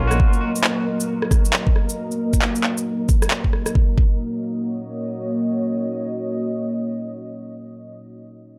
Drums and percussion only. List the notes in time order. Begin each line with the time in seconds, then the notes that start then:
0.11 cross-stick, shaker
0.20 kick
0.33 shaker
0.56 shaker
0.64 clap
1.00 shaker
1.22 cross-stick
1.31 kick, cross-stick, shaker
1.45 shaker
1.53 clap
1.67 kick
1.76 cross-stick
1.89 shaker
2.11 shaker
2.33 kick, shaker
2.42 clap
2.55 shaker
2.64 clap
2.77 shaker
3.09 kick, shaker
3.22 cross-stick, shaker
3.31 clap
3.44 kick
3.53 cross-stick
3.66 cross-stick, shaker
3.75 kick
3.98 kick